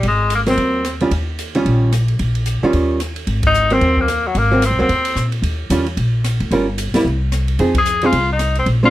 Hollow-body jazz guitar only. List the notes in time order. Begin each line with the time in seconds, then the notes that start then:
0.47 F#3 A#3 C4
1.01 D#3 G3 C#4 F4
1.55 D#3 G3 C#4 F4
2.63 D#3 G3 C#4 F4
3.71 F#3 A#3 C4
4.51 F#3 A#3 C4
4.79 F#3 A#3 C4
5.71 D#3 G3 C#4 F4
6.52 G3 C#4 F4 A#4
6.95 G3 A#3 E4
7.60 F3 C4 D#4 G#4
8.03 F3 C4 D#4 G#4
8.83 G#3 C4 D4